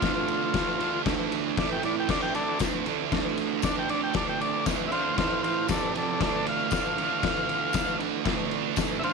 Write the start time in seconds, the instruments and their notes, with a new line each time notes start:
Already playing: transistor combo organ F4
0.02 distorted electric guitar D3 A3 D4, kick, snare, ride
0.28 ride
0.54 distorted electric guitar D3 A3 D4, kick, snare, ride
0.80 distorted electric guitar D3 A3 D4, ride
1.05 distorted electric guitar D3 A3 D4, kick, snare, ride
1.32 ride
1.57 distorted electric guitar A2 E3 A3, transistor combo organ D5, kick, snare, ride
1.72 transistor combo organ G5
1.83 distorted electric guitar A2 E3 A3, transistor combo organ D5, ride
2.00 transistor combo organ G5
2.09 distorted electric guitar D3 A3 D4, transistor combo organ D5, kick, snare, crash
2.22 transistor combo organ G5
2.35 transistor combo organ A4 D5, ride
2.59 distorted electric guitar D3 A3 D4, kick, snare, ride, tambourine
2.86 distorted electric guitar D3 A3 D4, ride
3.12 distorted electric guitar D3 A3 D4, kick, snare, ride
3.37 ride
3.62 distorted electric guitar D3 A3 D4, transistor combo organ D5, kick, snare, ride, tambourine
3.79 transistor combo organ G5
3.89 distorted electric guitar D3 A3 D4, transistor combo organ D5, ride
4.03 transistor combo organ G5
4.14 distorted electric guitar D3 A3 D4, transistor combo organ D5, kick, snare, ride
4.29 transistor combo organ G5
4.41 transistor combo organ D5, ride
4.65 distorted electric guitar D3 A3 D4, kick, snare, ride, tambourine
4.88 distorted electric guitar D3, transistor combo organ E5, ride
4.92 distorted electric guitar A3 D4, transistor combo organ C5 F5
5.17 distorted electric guitar A2 E3 A3, transistor combo organ C5 F5, kick, snare, ride
5.43 transistor combo organ C5 F5, ride
5.68 distorted electric guitar F2 C3 F3, transistor combo organ A4 D5, kick, snare, ride, tambourine
5.95 distorted electric guitar F2 C3 F3, transistor combo organ A4 D5, ride
6.20 distorted electric guitar D3 A3 D4, transistor combo organ A4 D5, kick, snare, ride
6.46 transistor combo organ F5, ride
6.71 distorted electric guitar D3 A3 D4, kick, snare, ride, tambourine
6.97 distorted electric guitar D3 A3 D4, ride
7.23 distorted electric guitar D3 A3 D4, kick, snare, ride
7.49 ride
7.73 distorted electric guitar D3 A3 D4, kick, snare, ride, tambourine
7.99 distorted electric guitar D3 A3 D4, ride
8.24 distorted electric guitar D3 A3 D4, kick, snare, ride
8.51 ride
8.76 distorted electric guitar D3 A3 D4, kick, snare, ride, tambourine
8.99 distorted electric guitar D3 A3 D4, transistor combo organ E5
9.03 transistor combo organ C5 F5, ride